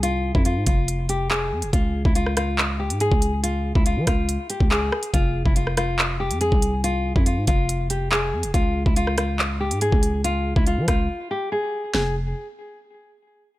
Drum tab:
HH |x---x-x-x-x----x|x---x-x----xx-x-|x---x-x-x-x----x|x---x-x----xx-x-|
CP |------------x---|--------x-------|------------x---|--------x-------|
SD |----------------|-----rr---------|------r-------r-|-----rr---------|
BD |---o--o---------|o--o---------o--|---o--o----o----|o--o---------o--|

HH |x---x-x-x-x----x|x---x-x----xx-x-|x---x-x---------|----------------|
CP |------------x---|--------x-------|----------------|----------------|
SD |----------------|-----rr---------|------r---------|o---------------|
BD |---o--o---------|o--o---------o--|---o--o---------|----------------|